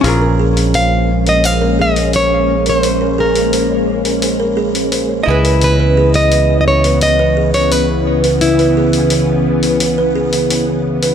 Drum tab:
HH |o--oo--oo--oo--o|o--oo--oo--oo--o|o--oo--oo--oo--o|oo-oo--oo--oo--o|